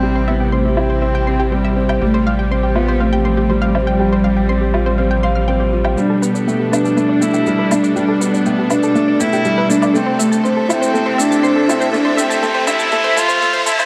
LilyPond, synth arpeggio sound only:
\new Staff \with { instrumentName = "Synth arpeggio sound" } { \time 4/4 \key g \mixolydian \tempo 4 = 121 g'16 c''16 e''16 g''16 c'''16 g'16 r16 c''16 e''16 g''16 c'''16 g'16 c''16 e''16 r16 g''16 | g'16 c''16 f''16 g''16 c'''16 g'16 r16 c''16 f''16 g''16 c'''16 g'16 c''16 f''16 r16 g''16 | g'16 c''16 f''16 g''16 c'''16 g'16 r16 c''16 f''16 g''16 c'''16 f'''16 g''16 g'16 r16 g''16 | g'16 a'16 b'16 d''16 g''16 g'16 r16 a'16 b'16 d''16 g''16 g'16 a'16 b'16 r16 d''16 |
g'16 a'16 b'16 d''16 g''16 g'16 r16 a'16 b'16 d''16 g''16 g'16 a'16 b'16 r16 d''16 | a'16 c''16 e''16 a''16 c'''16 a'16 r16 c''16 a'16 c''16 e''16 a''16 c'''16 a'16 r16 c''16 | a'16 c''16 e''16 a''16 a'16 c''16 e''16 a''16 a'16 c''16 a'16 c''16 a'16 c''16 a'16 c''16 | }